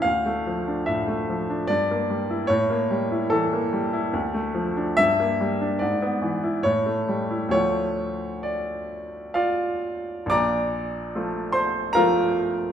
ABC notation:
X:1
M:3/4
L:1/16
Q:1/4=72
K:Dm
V:1 name="Grand piano"
f4 e4 d4 | ^c4 A8 | e4 d4 ^c4 | ^c4 d4 [Fdf]4 |
[dbd']6 [cc']2 [Bfb]4 |]
V:2 name="Grand piano" clef=bass
D,, A, F, D A,, A, F, D G,, B, G, E | A,, B, G, E E, B, G, E D,, A, F, D | G,, B, G, D ^G,, =B, E, E A,, A, =G, E | [D,,F,A,F]12 |
[B,,,B,,]4 [F,A,F]4 [F,A,F]4 |]